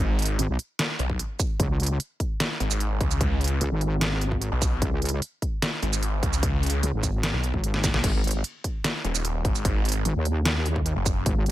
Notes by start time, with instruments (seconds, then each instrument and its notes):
Already playing: detuned saw bass G#1
0.19 closed hi-hat
0.22 closed hi-hat
0.26 closed hi-hat
0.39 wobble bass G#1, closed hi-hat
0.49 wobble bass B1
0.59 closed hi-hat
0.79 snare, closed hi-hat
0.99 detuned saw bass B1, closed hi-hat
1.10 kick
1.19 closed hi-hat
1.39 kick, closed hi-hat, shaker
1.60 wobble bass C#2, kick, closed hi-hat
1.80 closed hi-hat
1.83 closed hi-hat
1.86 closed hi-hat
2.00 closed hi-hat
2.20 kick, closed hi-hat
2.40 snare, closed hi-hat
2.60 detuned saw bass G#1, closed hi-hat
2.71 shaker
2.80 closed hi-hat
3.01 detuned saw bass C#2, kick, closed hi-hat
3.11 shaker
3.21 kick, closed hi-hat
3.41 closed hi-hat
3.44 closed hi-hat
3.48 closed hi-hat
3.61 wobble bass C#2, closed hi-hat
3.71 wobble bass G#1
3.81 closed hi-hat
4.01 snare, closed hi-hat
4.21 closed hi-hat
4.32 kick
4.42 closed hi-hat
4.52 detuned saw bass B1
4.62 kick, closed hi-hat, shaker
4.82 wobble bass C#2, kick, closed hi-hat
5.02 closed hi-hat
5.05 closed hi-hat
5.09 closed hi-hat
5.22 closed hi-hat
5.42 kick, closed hi-hat
5.62 snare, closed hi-hat
5.82 detuned saw bass G#1, closed hi-hat
5.93 shaker
6.03 closed hi-hat
6.23 detuned saw bass C#2, kick, closed hi-hat
6.33 shaker
6.43 kick, closed hi-hat
6.63 closed hi-hat
6.66 closed hi-hat
6.70 closed hi-hat
6.83 wobble bass C#2, closed hi-hat
6.93 wobble bass G#1
7.03 kick, closed hi-hat, shaker
7.23 snare, closed hi-hat
7.34 detuned saw bass B1
7.44 closed hi-hat
7.54 wobble bass G#1, kick
7.64 closed hi-hat
7.74 snare
7.84 kick, snare, closed hi-hat, shaker
7.94 detuned saw bass B1, snare
8.04 wobble bass G#1, kick, closed hi-hat, crash
8.24 closed hi-hat
8.27 closed hi-hat
8.31 closed hi-hat
8.44 closed hi-hat
8.64 kick, closed hi-hat
8.84 snare, closed hi-hat
9.04 detuned saw bass D#1, closed hi-hat
9.15 shaker
9.25 closed hi-hat
9.45 detuned saw bass G#1, kick, closed hi-hat
9.55 shaker
9.65 kick, closed hi-hat
9.85 closed hi-hat
9.89 closed hi-hat
9.92 closed hi-hat
10.05 wobble bass G#1, closed hi-hat
10.16 wobble bass D#2
10.25 closed hi-hat
10.45 snare, closed hi-hat
10.66 closed hi-hat
10.76 kick
10.86 closed hi-hat
10.96 detuned saw bass F#1
11.06 kick, closed hi-hat, shaker
11.26 wobble bass G#1, kick, closed hi-hat
11.46 closed hi-hat